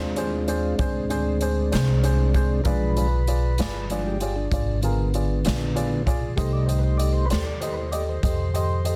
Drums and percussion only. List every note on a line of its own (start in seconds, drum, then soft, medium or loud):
0.16 closed hi-hat medium
0.48 closed hi-hat medium
0.79 kick loud
0.79 closed hi-hat medium
1.10 closed hi-hat medium
1.41 closed hi-hat medium
1.72 snare medium
1.72 closed hi-hat medium
2.04 closed hi-hat medium
2.34 kick medium
2.34 closed hi-hat medium
2.65 kick medium
2.65 closed hi-hat medium
2.97 closed hi-hat medium
3.27 closed hi-hat medium
3.58 snare medium
3.58 closed hi-hat medium
3.90 closed hi-hat medium
4.20 closed hi-hat medium
4.52 kick medium
4.52 closed hi-hat medium
4.83 closed hi-hat medium
5.14 closed hi-hat medium
5.45 snare loud
5.45 closed hi-hat medium
5.76 closed hi-hat medium
6.07 kick medium
6.07 closed hi-hat medium
6.38 kick loud
6.38 closed hi-hat medium
6.69 closed hi-hat medium
6.99 closed hi-hat medium
7.30 snare medium
7.30 closed hi-hat medium
7.62 closed hi-hat medium
7.92 closed hi-hat medium
8.23 kick loud
8.23 closed hi-hat medium
8.55 closed hi-hat medium
8.85 closed hi-hat medium